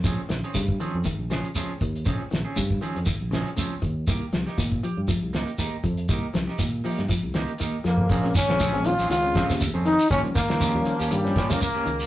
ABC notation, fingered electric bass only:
X:1
M:4/4
L:1/16
Q:"Swing 16ths" 1/4=119
K:Bbdor
V:1 name="Fingered electric bass" clef=bass
B,,, z B,,, z G,,2 z F,, z B,,,2 z3 E,,2 | B,,, z B,,, z G,,2 z F,, z B,,,2 z3 E,,2 | C,, z C,, z B,,2 z G,, z C,,2 z3 F,,2 | C,, z C,, z B,,2 z G,, z C,,2 z3 F,,2 |
B,,,2 z B,,,2 B,,,2 B,,, D,,3 E,,2 F,,2 z | E,, z2 E,2 E,, z E,, G,,2 z4 D,,2 |]